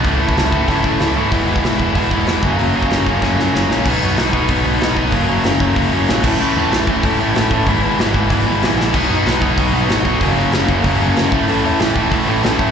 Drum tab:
CC |----------------|----------------|----------------|x---------------|
HH |o---o---o---o---|o---o---o---o---|o---o-----------|----o---o---o---|
SD |----o-------o---|----o-------o---|----o---o-o-o-o-|----o-------o---|
BD |o--o--o-o-o-----|o--o--o-o-o---o-|---o--o-o-------|o-----o-o-----o-|

CC |--------------x-|----------------|----------------|x---------------|
HH |o---o---o---o---|----o---o---o---|o---o---o---o---|----o---o---o---|
SD |----o-------o---|----o-------o---|----o-------o-o-|----o-------o---|
BD |o-----o-o-----o-|------o-o-----o-|o-----o-o-------|o-----o-o-----o-|

CC |----------------|----------------|
HH |o---o---o---o---|o---o---o---o---|
SD |----o-------o---|----o-------o---|
BD |o-----o-o-----o-|------o-o-----o-|